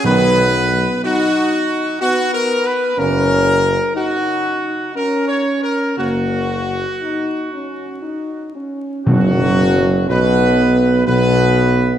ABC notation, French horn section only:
X:1
M:3/4
L:1/8
Q:1/4=60
K:B
V:1 name="French horn section"
B,2 D2 B,2 | C2 D2 C2 | A,2 D C D C | F,2 B,2 B,2 |]